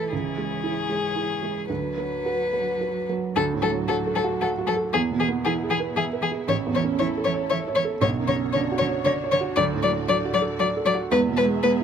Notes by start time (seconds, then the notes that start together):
Already playing: B1 E3 A3 E4 A4 B4
0.10 C#2 G#4 C#5
0.38 G#3 G#4
0.63 E4 G#4
0.89 G#3 G#4
1.15 E4 G#4
1.42 G#3 G#4
1.68 D2 F#3 D4 F#4 B4
1.97 F#3 B4
2.26 F#4 B4
2.53 F#3 B4
2.81 F#4 B4
3.09 F#3 B4
3.34 D2 F#3 D4 F#4 A4
3.54 A2
3.62 F#3 A4
3.71 F#3
3.88 F#3 F#4 A4
4.07 A4
4.14 F#3 A4
4.24 F#4
4.40 F#3 A4 F#5
4.58 F#4
4.66 F#3 A4
4.76 A4
4.91 E2 E3 B3 E4 G#4
5.11 B2
5.18 E3 G#4
5.29 B3
5.44 E3 E4 G#4
5.63 G#4
5.69 E3 G#4
5.80 B4
5.95 E3 G#4 E5
6.13 B4
6.21 E3 G#4
6.32 G#4
6.47 A1 E3 C#4 A4 C#5
6.66 E2
6.75 E3 C#5
6.83 C#4
6.99 E3 E4 C#5
7.17 A4
7.24 E3 C#5
7.34 C#5
7.50 E3 C#5 E5
7.68 C#5
7.75 E3 C#5
7.85 A4
8.01 B1 D3 D4 F#4 C#5
8.19 F#2
8.28 D3 C#5
8.36 C#4
8.53 D3 D4 C#5
8.72 F#4
8.78 D3 C#5
8.89 C#5
9.05 D3 C#5 D5
9.24 C#5
9.31 D3 C#5
9.41 F#4
9.56 D2 F#3 D5
9.74 A2
9.83 F#3 D5
9.90 A3
10.08 F#3 D4 D5
10.25 F#4
10.33 F#3 D5
10.42 A4
10.58 F#3 D5
10.77 A4
10.85 F#3 D5
10.95 F#4
11.11 E2 G#3 B3 G#4 B4 E5
11.29 B2
11.37 G#3 B4
11.46 G#3
11.63 G#3 B3 B4